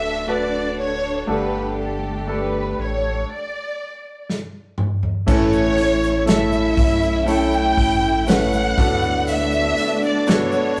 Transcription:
0.00 1.24 D1 medium
0.00 1.24 D3 medium
0.00 2.77 D3 medium
0.00 0.27 A3 medium
0.00 1.27 A3 medium
0.00 0.28 D4 medium
0.00 1.28 D4 medium
0.00 3.24 D4 medium
0.00 0.28 F#4 medium
0.00 1.24 F#4 medium
0.00 1.29 F#4 medium
0.00 1.24 A4 medium
0.00 1.28 A4 medium
0.00 1.30 A4 medium
0.00 0.23 B4 medium
0.00 0.28 E5 medium
0.27 1.22 A3 medium
0.27 1.23 D4 medium
0.27 1.23 F#4 medium
0.27 1.23 B4 medium
0.27 0.79 D5 medium
0.80 1.26 C#5 medium
1.27 2.74 G1 medium
1.27 2.74 G2 medium
1.27 2.74 D3 medium
1.27 3.27 G3 medium
1.27 2.22 A3 medium
1.27 3.26 A3 medium
1.27 2.22 D4 medium
1.27 3.28 D4 medium
1.27 2.23 G4 medium
1.27 3.26 G4 medium
1.27 3.29 G4 medium
1.27 2.23 A4 medium
1.27 1.76 B4 medium
1.31 3.79 A4 medium
1.81 2.29 A4 medium
2.27 3.22 A3 medium
2.27 3.22 D4 medium
2.27 3.23 G4 medium
2.27 3.23 A4 medium
2.31 2.79 B4 medium
2.78 3.24 A1 medium
2.82 3.30 C#5 medium
3.31 4.25 D5 medium
4.30 snare soft
4.78 mid tom medium
5.03 floor tom medium
5.26 6.74 A1 loud
5.26 6.73 A2 medium
5.26 5.77 A2 medium
5.26 6.73 E3 medium
5.26 5.78 E3 medium
5.26 6.22 A3 medium
5.26 10.80 A3 medium
5.26 5.78 A3 medium
5.26 6.22 C#4 medium
5.26 8.74 C#4 medium
5.26 5.78 C#4 medium
5.26 8.23 E4 loud
5.26 8.74 E4 medium
5.26 6.23 E4 medium
5.26 5.77 E4 medium
5.26 6.23 A4 medium
5.26 5.76 A4 medium
5.26 kick loud
5.26 crash medium
5.26 shaker medium
5.31 6.25 C#5 loud
5.53 shaker medium
5.77 7.27 A3 soft
5.77 7.27 C#4 soft
5.77 7.28 E4 soft
5.77 7.29 A4 soft
5.77 hi-hat pedal medium
5.77 open hi-hat medium
5.77 shaker soft
6.03 shaker soft
6.26 7.22 A3 medium
6.26 7.22 C#4 medium
6.26 7.22 E4 medium
6.26 7.22 A4 medium
6.26 snare loud
6.26 hi-hat pedal medium
6.26 open hi-hat loud
6.26 shaker medium
6.30 7.25 E5 medium
6.52 shaker medium
6.77 7.73 B1 loud
6.77 kick medium
6.77 hi-hat pedal medium
6.77 open hi-hat medium
6.77 shaker soft
7.02 shaker soft
7.25 8.22 A3 medium
7.25 8.27 A3 medium
7.25 8.22 C#4 medium
7.25 8.27 C#4 medium
7.25 8.22 E4 medium
7.25 8.28 E4 medium
7.25 8.22 A4 medium
7.25 hi-hat pedal medium
7.25 open hi-hat medium
7.25 shaker medium
7.30 8.30 A4 medium
7.30 8.29 G5 loud
7.52 shaker soft
7.77 8.73 A1 loud
7.77 kick medium
7.77 hi-hat pedal medium
7.77 open hi-hat medium
8.02 shaker soft
8.26 8.77 A3 medium
8.26 8.77 C#4 medium
8.26 8.78 C#4 medium
8.26 8.77 E4 medium
8.26 8.78 E4 medium
8.26 8.77 A4 medium
8.26 8.78 B4 medium
8.26 snare loud
8.26 hi-hat pedal medium
8.26 open hi-hat loud
8.26 shaker medium
8.30 9.29 F#5 loud
8.52 shaker medium
8.77 9.74 D2 medium
8.77 10.24 A2 medium
8.77 10.80 D3 medium
8.77 10.80 D3 soft
8.77 9.78 A3 medium
8.77 10.20 B3 medium
8.77 10.80 B3 medium
8.77 10.20 D4 medium
8.77 10.80 D4 loud
8.77 9.79 D4 medium
8.77 9.77 F#4 medium
8.77 10.80 F#4 medium
8.77 10.21 F#4 medium
8.77 10.21 A4 medium
8.77 9.77 B4 medium
8.77 kick loud
8.77 hi-hat pedal medium
8.77 open hi-hat medium
9.02 shaker soft
9.27 10.04 E5 loud
9.27 hi-hat pedal medium
9.27 open hi-hat medium
9.27 shaker medium
9.52 shaker soft
9.77 10.80 D4 soft
9.77 10.80 F#4 soft
9.77 10.80 B4 soft
9.77 hi-hat pedal medium
9.77 open hi-hat medium
9.77 shaker soft
10.03 10.27 D5 medium
10.03 shaker soft
10.27 10.80 B3 medium
10.27 10.80 D4 medium
10.27 10.80 F#4 medium
10.27 10.80 A4 medium
10.27 10.80 C#5 medium
10.27 snare loud
10.27 hi-hat pedal medium
10.27 open hi-hat medium
10.27 shaker medium
10.52 shaker medium

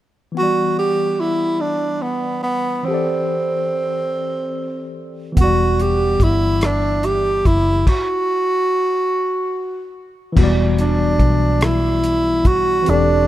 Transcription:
0.32 2.80 E3 soft
0.32 2.82 B3 soft
0.37 2.85 G3 soft
0.37 0.76 F#4 medium
0.37 2.83 F#5 soft
0.43 2.86 D5 medium
0.79 1.21 G4 medium
1.20 1.62 E4 medium
1.61 2.04 D4 medium
2.02 2.43 B3 medium
2.43 2.87 B3 medium
2.83 5.31 E3 medium
2.83 5.32 C4 soft
2.83 4.94 C4 medium
2.88 5.33 G4 soft
2.88 5.35 A4 soft
2.94 5.36 D5 medium
5.32 7.81 E3 medium
5.32 7.82 B3 soft
5.37 6.17 E1 medium
5.37 7.83 F#5 soft
5.37 kick medium
5.37 closed hi-hat medium
5.41 7.85 G3 soft
5.41 5.83 F#4 medium
5.41 7.86 D5 medium
5.80 6.25 G4 medium
5.80 closed hi-hat soft
6.20 7.42 G1 medium
6.20 6.67 E4 medium
6.20 kick medium
6.20 closed hi-hat soft
6.61 cross-stick medium
6.61 closed hi-hat medium
6.65 7.07 D4 medium
7.03 7.48 G4 medium
7.03 closed hi-hat soft
7.45 7.84 F#1 medium
7.45 7.88 E4 medium
7.45 kick medium
7.45 closed hi-hat soft
7.87 9.92 F#4 medium
7.87 kick medium
7.87 crash medium
10.32 12.81 E3 medium
10.32 12.82 B3 medium
10.37 11.17 E1 medium
10.37 12.84 F#4 medium
10.37 kick medium
10.37 crash medium
10.41 12.85 G3 medium
10.41 12.86 D5 medium
10.78 11.65 D4 medium
10.78 closed hi-hat soft
11.19 12.83 B1 medium
11.19 kick medium
11.19 closed hi-hat soft
11.61 12.49 E4 medium
11.61 cross-stick loud
11.61 closed hi-hat medium
12.04 closed hi-hat soft
12.45 12.91 F#4 medium
12.45 kick medium
12.45 closed hi-hat soft
12.82 13.27 E3 medium
12.82 13.27 C4 soft
12.82 closed hi-hat medium
12.87 13.27 E1 medium
12.87 13.27 D4 medium
12.87 13.27 G4 medium
12.87 13.27 A4 medium
12.93 13.27 D5 medium

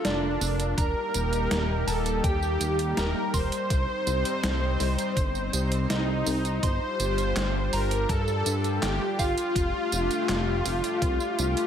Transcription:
0.00 0.74 D4 medium
0.00 0.12 F4 loud
0.00 0.74 F4 medium
0.00 0.75 A4 medium
0.00 0.75 A#4 loud
0.00 0.12 F5 loud
0.05 0.38 F1 medium
0.05 0.74 D4 loud
0.05 0.74 D5 loud
0.05 snare loud
0.05 closed hi-hat loud
0.05 tambourine soft
0.41 0.75 F1 loud
0.41 open hi-hat medium
0.41 tambourine medium
0.60 closed hi-hat medium
0.60 tambourine soft
0.78 0.94 D#1 loud
0.78 6.59 G3 medium
0.78 3.68 A#3 medium
0.78 3.68 D#4 medium
0.78 3.68 G4 medium
0.78 1.91 A#4 loud
0.78 1.91 A#5 loud
0.78 kick loud
0.78 closed hi-hat loud
0.78 tambourine soft
1.14 1.48 D#1 medium
1.14 closed hi-hat medium
1.14 tambourine medium
1.33 closed hi-hat medium
1.33 tambourine soft
1.51 1.84 D#1 loud
1.51 snare loud
1.51 closed hi-hat loud
1.51 tambourine soft
1.87 2.21 D#1 medium
1.87 2.22 A4 loud
1.87 2.21 A5 loud
1.87 open hi-hat medium
1.87 tambourine medium
2.06 closed hi-hat medium
2.06 tambourine soft
2.24 2.57 D#2 loud
2.24 2.99 G4 loud
2.24 2.99 G5 loud
2.24 kick loud
2.24 closed hi-hat medium
2.24 tambourine soft
2.42 tambourine soft
2.61 2.94 D#2 medium
2.61 closed hi-hat medium
2.61 tambourine medium
2.79 closed hi-hat medium
2.79 tambourine soft
2.97 3.14 D#1 medium
2.97 3.35 A#4 loud
2.97 3.35 A#5 loud
2.97 snare loud
2.97 closed hi-hat loud
2.97 tambourine soft
3.34 3.50 D#1 medium
3.34 5.98 C5 loud
3.34 5.98 C6 loud
3.34 kick medium
3.34 open hi-hat medium
3.34 tambourine medium
3.52 closed hi-hat medium
3.52 tambourine soft
3.70 3.87 C2 medium
3.70 6.60 C4 medium
3.70 6.60 D#4 medium
3.70 6.60 C5 loud
3.70 kick loud
3.70 closed hi-hat medium
3.70 tambourine soft
4.07 4.24 C2 medium
4.07 closed hi-hat medium
4.07 tambourine medium
4.25 closed hi-hat medium
4.25 tambourine soft
4.44 4.77 C2 loud
4.44 snare loud
4.44 closed hi-hat loud
4.44 tambourine soft
4.80 4.97 C2 loud
4.80 open hi-hat medium
4.80 tambourine medium
4.99 closed hi-hat medium
4.99 tambourine soft
5.17 5.50 G1 medium
5.17 kick loud
5.17 closed hi-hat medium
5.17 tambourine soft
5.35 tambourine soft
5.53 5.87 C2 medium
5.53 closed hi-hat medium
5.53 tambourine medium
5.72 closed hi-hat medium
5.72 tambourine soft
5.90 6.23 C2 loud
5.90 6.65 D#4 medium
5.90 6.65 D#5 medium
5.90 snare loud
5.90 closed hi-hat loud
5.90 tambourine soft
6.26 6.60 C2 medium
6.26 open hi-hat medium
6.26 tambourine medium
6.45 closed hi-hat medium
6.45 tambourine soft
6.63 6.80 G1 loud
6.63 9.53 G3 medium
6.63 11.67 D4 medium
6.63 11.67 F4 medium
6.63 11.67 G4 medium
6.63 7.76 C5 loud
6.63 7.76 C6 loud
6.63 kick loud
6.63 closed hi-hat medium
6.63 tambourine soft
7.00 7.33 G1 medium
7.00 closed hi-hat medium
7.00 tambourine medium
7.18 closed hi-hat medium
7.18 tambourine soft
7.36 7.70 G1 loud
7.36 snare loud
7.36 clap loud
7.36 closed hi-hat medium
7.36 tambourine soft
7.73 8.06 G1 medium
7.73 8.10 A#4 loud
7.73 8.11 A#5 loud
7.73 open hi-hat medium
7.73 tambourine medium
7.91 closed hi-hat medium
7.91 tambourine soft
8.09 8.43 G2 loud
8.09 8.78 A4 loud
8.09 8.79 A5 loud
8.09 kick loud
8.09 closed hi-hat medium
8.09 tambourine soft
8.28 tambourine soft
8.46 8.79 G2 medium
8.46 closed hi-hat medium
8.46 tambourine medium
8.64 closed hi-hat medium
8.64 tambourine soft
8.82 8.99 G1 medium
8.82 9.20 G4 loud
8.82 9.20 G5 loud
8.82 snare loud
8.82 clap medium
8.82 closed hi-hat medium
8.82 tambourine soft
9.19 9.36 G1 medium
9.19 11.67 F4 loud
9.19 11.67 F5 loud
9.19 kick medium
9.19 open hi-hat medium
9.19 tambourine medium
9.38 closed hi-hat medium
9.38 tambourine soft
9.56 9.72 F1 medium
9.56 11.67 A3 medium
9.56 kick loud
9.56 closed hi-hat medium
9.56 tambourine soft
9.92 10.09 F1 medium
9.92 closed hi-hat medium
9.92 tambourine medium
10.11 closed hi-hat medium
10.11 tambourine soft
10.29 10.62 F1 loud
10.29 snare loud
10.29 clap loud
10.29 closed hi-hat medium
10.29 tambourine soft
10.66 10.82 F1 medium
10.66 open hi-hat medium
10.66 tambourine medium
10.84 closed hi-hat medium
10.84 tambourine soft
11.02 11.19 C2 loud
11.02 kick loud
11.02 closed hi-hat medium
11.02 tambourine soft
11.20 tambourine soft
11.39 11.55 C2 medium
11.39 closed hi-hat medium
11.39 tambourine medium
11.57 closed hi-hat medium
11.57 tambourine soft

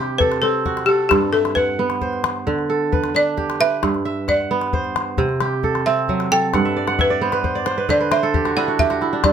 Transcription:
0.00 1.16 C3 medium
0.00 0.21 G4 medium
0.00 0.72 G4 medium
0.00 0.48 C5 medium
0.18 0.88 A4 medium
0.18 0.40 B4 medium
0.18 calabash thump medium
0.32 calabash click medium
0.42 1.85 C4 medium
0.42 0.89 A4 medium
0.65 2.12 F#4 medium
0.65 calabash thump medium
0.77 calabash click medium
0.86 1.08 G4 medium
0.86 2.20 A4 medium
0.86 calabash click soft
1.09 2.52 G2 medium
1.09 1.20 G4 medium
1.09 calabash thump medium
1.09 calabash click medium
1.22 calabash click soft
1.33 1.56 A4 medium
1.33 2.37 E5 medium
1.33 calabash click soft
1.45 calabash click medium
1.55 1.98 B4 medium
1.55 2.53 F#5 medium
1.55 calabash thump medium
1.55 calabash click soft
1.79 3.65 B3 medium
1.90 calabash click soft
2.01 2.98 C5 medium
2.01 calabash thump medium
2.13 calabash click soft
2.24 calabash click medium
2.47 3.88 D3 medium
2.47 calabash thump medium
2.59 calabash click soft
2.70 4.01 A4 medium
2.92 3.60 B4 medium
2.92 calabash thump medium
3.04 calabash click medium
3.15 4.82 D4 medium
3.15 3.62 D5 medium
3.37 4.34 G4 medium
3.37 calabash thump medium
3.50 calabash click medium
3.60 4.80 B4 medium
3.60 4.30 E5 loud
3.60 calabash click soft
3.83 5.24 G2 medium
3.83 calabash thump medium
3.83 calabash click medium
3.95 calabash click soft
4.05 5.09 E5 medium
4.05 calabash click soft
4.28 4.92 D5 medium
4.28 5.24 F#5 medium
4.28 calabash thump medium
4.28 calabash click soft
4.51 5.24 B3 medium
4.61 calabash click soft
4.73 5.92 C5 medium
4.73 calabash thump medium
4.84 calabash click soft
4.96 calabash click medium
5.18 6.59 C3 medium
5.18 calabash thump medium
5.29 calabash click soft
5.41 6.15 G4 medium
5.41 calabash click medium
5.63 6.31 A4 medium
5.63 calabash thump medium
5.75 calabash click soft
5.86 7.27 C4 medium
5.86 6.33 E5 medium
6.08 6.59 F#3 medium
6.08 calabash thump medium
6.20 calabash click soft
6.32 7.63 A4 medium
6.32 6.95 G5 loud
6.32 calabash click soft
6.54 7.94 G2 medium
6.54 6.87 F#5 medium
6.54 calabash thump medium
6.54 calabash click medium
6.65 6.98 E5 medium
6.65 calabash click soft
6.77 7.10 D5 medium
6.88 7.84 F#5 medium
6.88 calabash click soft
6.99 7.64 B4 medium
6.99 8.02 E5 medium
6.99 calabash thump medium
6.99 calabash click soft
7.10 7.55 D5 medium
7.21 7.72 B3 medium
7.21 7.44 C5 medium
7.32 7.72 B4 medium
7.32 calabash click soft
7.44 7.66 C5 medium
7.44 calabash thump medium
7.44 calabash click soft
7.55 8.66 D5 medium
7.66 7.89 C5 medium
7.66 calabash click medium
7.77 8.00 B4 medium
7.77 calabash click soft
7.89 9.29 D3 medium
7.89 8.11 C5 medium
7.89 8.13 D5 medium
7.89 calabash thump medium
8.01 9.23 B4 medium
8.12 9.30 C5 medium
8.12 8.54 E5 medium
8.12 calabash click medium
8.23 9.33 A4 medium
8.23 calabash click soft
8.34 8.74 G4 medium
8.34 calabash thump medium
8.45 8.67 F#4 medium
8.45 calabash click medium
8.57 9.12 D4 medium
8.57 9.01 E4 medium
8.57 8.80 F#5 loud
8.57 calabash click soft
8.68 8.90 F#4 medium
8.79 9.33 G4 medium
8.79 9.25 E5 loud
8.79 calabash thump medium
8.90 9.30 F#4 medium
8.90 calabash click medium
9.01 9.33 E4 medium
9.01 calabash click soft
9.13 9.33 D4 medium
9.24 9.33 G2 medium
9.24 9.33 D5 loud
9.24 calabash thump medium
9.24 calabash click medium

